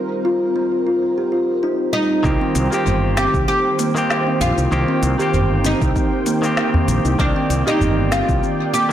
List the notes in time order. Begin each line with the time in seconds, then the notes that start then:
Already playing: D#3 A#3 C4 D#4 G4 A#4 C5
0.25 F4
0.56 C4
0.87 F4
1.18 G4
1.32 F4
1.63 D#4
1.93 G3 D#4
2.23 C2 D#3 A#3 C4 G4 C5 G5, kick, cabasa
2.41 C4
2.55 C2, closed hi-hat, cabasa
2.70 D#3 A#3 C4 G4, cabasa
2.86 G1, udu, cabasa
3.17 C4 G4, snare, closed hi-hat, cabasa
3.34 C2, kick, cabasa
3.48 C4 G4, cabasa
3.79 A#3, closed hi-hat, cabasa
3.95 D#3 A#3 C4 G4, cabasa
4.10 snare, cabasa
4.27 C4
4.41 A#1 F4, closed hi-hat, udu, cabasa
4.58 C2 D#4, cabasa
4.71 C2 D#3 A#3 C4 G4, cabasa
4.88 C4
5.03 C2, closed hi-hat, cabasa
5.18 D#3 A#3 C4 G4, cabasa
5.22 G4
5.34 G1, udu, cabasa
5.65 C4 D#4, closed hi-hat, cabasa
5.82 C2, kick, cabasa
5.96 C4, kick, cabasa
6.26 A#3, closed hi-hat, cabasa
6.42 D#3 A#3 C4 G4, cabasa
6.57 snare, cabasa
6.74 C4, udu
6.88 A#1, closed hi-hat, cabasa
7.05 C2 D#4, cabasa
7.19 C2 D#3 A#3 C4 D4 G4 D5, kick, cabasa
7.36 C4
7.50 C2, closed hi-hat, cabasa
7.66 D#3 A#3 C4 D#4 G4, cabasa
7.70 G4
7.81 G1, udu, cabasa
8.12 C4 F4, snare, closed hi-hat, cabasa
8.29 C2, kick, cabasa
8.43 C4, cabasa
8.74 A#3 G4, closed hi-hat, cabasa
8.89 D#3